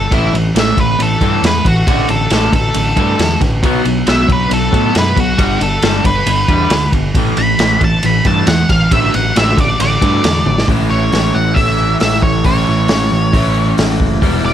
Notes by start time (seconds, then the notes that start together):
Already playing: A4
0.11 A1 A2 E3 A3 E4, kick, ride
0.33 A1 A2 E3, ride
0.55 A1 A2 E3 A3, snare, ride
0.59 E5
0.77 A1 A2 E3 B4, kick, ride
0.99 A1 A2 E3 A4, ride
1.21 G2 A2 E3 A3, kick, ride
1.43 E2 A2 E3 B4, snare, ride
1.65 A1 A2 E3 F#4, kick, ride
1.87 A1 A2 D3 A3, kick, ride
2.09 A1 A2 D3 A4, ride
2.30 A1 A2 D3 A3, snare, ride
2.53 A1 A2 D3 A4, kick, ride
2.74 A1 A2 D3, ride
2.96 G2 A2 D3 A3, kick, ride
3.19 E2 A2 D3, snare, ride
3.40 A1 A2 D3, kick, snare, ride
3.63 B1 B2 F#3 B3, kick, ride
3.85 B1 B2 F#3, ride
4.07 B1 B2 F#3 B3 E5, snare, ride
4.28 B1 B2 F#3, kick, ride
4.32 B4
4.49 B1 B2 F#3, ride
4.54 A4
4.71 A2 B2 F#3 B3, kick, ride
4.94 F#2 B2 F#3, snare, ride
4.99 B4
5.15 B1 B2 F#3, kick, ride
5.20 F#4
5.37 G1 G2 D3 G3, kick, ride
5.59 G1 G2 D3 A4, ride
5.82 G1 G2 D3 G3, snare, ride
6.04 G1 G2 D3 B4, kick, ride
6.26 G1 G2 D3, ride
6.48 E2 G2 D3 G3, kick, ride
6.70 D2 G2 D3, snare, ride
6.93 G1 G2 D3, kick, ride
7.15 A1 A2 E3 A3, kick, ride
7.37 A1 A2 E3 B5, ride
7.59 A1 A2 E3 A3, snare, ride
7.81 A1 A2 E3 A5, kick, ride
8.03 A1 A2 E3 B5, ride
8.25 G2 A2 E3 A3 A5, kick, ride
8.47 E2 A2 E3 F#5, snare, ride
8.69 A1 A2 E3 F5, kick, snare, ride
8.91 A1 A2 D3 A3 E5, kick, ride
9.14 A1 A2 D3 F#5, ride
9.36 A1 A2 D3 A3 E5, snare, ride
9.58 A1 A2 D3 D5, kick, ride
9.80 A1 A2 D3 D5, ride
10.01 G2 A2 D3 A3, kick, ride
10.24 E2 A2 D3, snare, ride
10.46 A1 A2 D3, high tom
10.58 snare
10.68 A1 A2 E3 A3 C#4 E4, kick, open hi-hat
10.90 A1 C#5
11.12 A1, snare, open hi-hat
11.35 A1 F#5
11.54 A1 A2 E3 A3 C#4 E5, kick, open hi-hat
11.59 E4
12.00 A1 E5, snare, open hi-hat
12.22 A1 C#5, kick
12.44 A1 A2 E3 A3 C#4 E4 C#5, kick, open hi-hat
12.68 A1
12.88 A1, snare, open hi-hat
13.12 A1
13.33 A1 A2 E3 A3 C#4 E4, kick, open hi-hat
13.78 A1, snare, open hi-hat
14.00 F#1, kick
14.21 E1 E3 G3 B3 E4, kick, open hi-hat
14.43 E1 D5